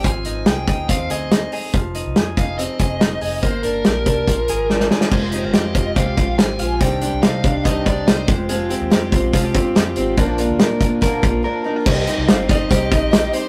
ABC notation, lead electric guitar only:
X:1
M:4/4
L:1/16
Q:1/4=142
K:Fdor
V:1 name="Lead electric guitar"
a4 g4 f2 e4 z2 | z6 f2 e8 | c2 B12 z2 | c4 e4 f4 a4 |
g4 f4 e2 d2 c3 z | z16 | z16 | e4 f2 e8 c2 |]